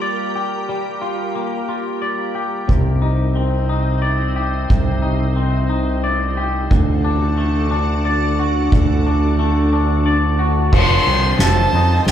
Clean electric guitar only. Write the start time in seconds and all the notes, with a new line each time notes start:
Already playing: G3 A#3 F4 G4
0.02 D5
0.35 G4
0.69 G3
1.01 F4
1.35 A#3
1.69 F4
2.02 D5
2.35 G4
2.68 C3
3.02 D#4
3.36 C4
3.69 D#4
4.02 D5
4.36 G4
4.69 C3
5.02 D#4
5.36 C4
5.69 D#4
6.04 D5
6.37 G4
6.71 D3
7.05 D4
7.38 A3
7.71 D4
8.05 D5
8.39 F#4
8.73 D3
9.06 D4
9.39 A3
9.73 D4
10.06 D5
10.39 F#4
10.73 F3
11.07 C4
11.41 A4
11.75 D#4
12.07 C4